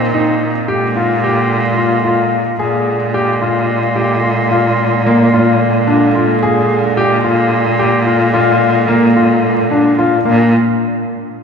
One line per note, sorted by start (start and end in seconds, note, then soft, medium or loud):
0.00 0.69 A#2 medium
0.00 0.64 D#3 medium
0.00 0.65 A#3 medium
0.00 0.64 C4 medium
0.14 0.50 D#4 medium
0.68 2.57 A#2 medium
0.68 2.42 D3 medium
0.68 2.42 G#3 medium
0.68 2.42 A#3 medium
0.68 0.86 G4 medium
0.96 1.14 F4 medium
1.24 1.59 G4 medium
1.78 1.96 F4 medium
2.05 2.41 F4 medium
2.59 6.44 A#2 medium
2.59 10.10 D3 medium
2.59 10.10 G#3 medium
2.59 10.10 A#3 medium
2.59 2.95 G#4 medium
3.14 3.32 G4 medium
3.42 3.78 F4 medium
3.96 4.14 G4 medium
4.24 4.42 F4 medium
4.51 4.87 F4 medium
5.06 5.24 A#3 medium
5.34 5.69 F4 medium
5.87 6.06 D4 medium
6.15 6.34 F4 medium
6.43 10.22 A#2 medium
6.43 6.79 G#4 medium
6.97 7.15 G4 medium
7.24 7.60 F4 medium
7.79 7.97 G4 medium
8.07 8.25 F4 medium
8.34 8.70 F4 medium
8.88 9.07 A#3 medium
9.16 9.52 F4 medium
9.71 9.89 D4 medium
9.99 10.16 F4 medium
10.25 10.52 A#2 medium
10.25 10.52 G#3 medium
10.25 10.51 A#3 medium
10.25 10.52 D4 medium